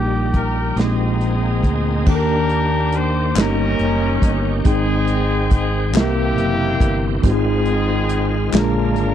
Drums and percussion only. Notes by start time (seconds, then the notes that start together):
0.34 kick, closed hi-hat
0.77 snare, closed hi-hat
1.21 closed hi-hat
1.63 kick, closed hi-hat
2.06 kick, crash
2.49 closed hi-hat
2.92 closed hi-hat
3.36 snare, clap, closed hi-hat
3.79 closed hi-hat
4.22 kick, closed hi-hat
4.65 kick, closed hi-hat
5.07 closed hi-hat
5.51 kick, closed hi-hat
5.94 snare, clap, closed hi-hat
6.38 closed hi-hat
6.80 kick, closed hi-hat
7.23 kick, closed hi-hat
7.66 closed hi-hat
8.09 closed hi-hat
8.52 snare, clap, closed hi-hat
8.96 closed hi-hat